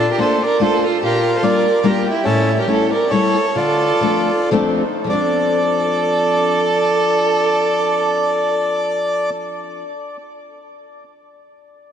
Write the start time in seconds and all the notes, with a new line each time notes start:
Already playing: D4 A4
0.10 G4 A#4
0.18 A3 A#3 D4 F4 A4 C5
0.43 A#4 D5
0.59 A3 A#3 D4 F4 A4 C5
0.84 F4 A4
1.02 A#2 F4 G4
1.06 A#4
1.35 A4 C5
1.42 G3 A#3 D4 F4 D5
1.47 A#4
1.83 G3 A#3 D4 F4 A#4
1.87 G4
2.06 G4
2.11 E4
2.24 A2 C#4 A4
2.29 E4
2.59 G4 A#4
2.67 G3 A3 C#4 E4 C#5
2.73 A4
2.91 A#4 D5
3.11 G3 A3 C#4 E4 A4 C#5
3.55 D3 F4 A4 D5
4.01 F3 A3 C4 D4
4.51 F3 A3 C4 D4
5.04 F3 A3
5.09 C4 A4 D5
5.13 D4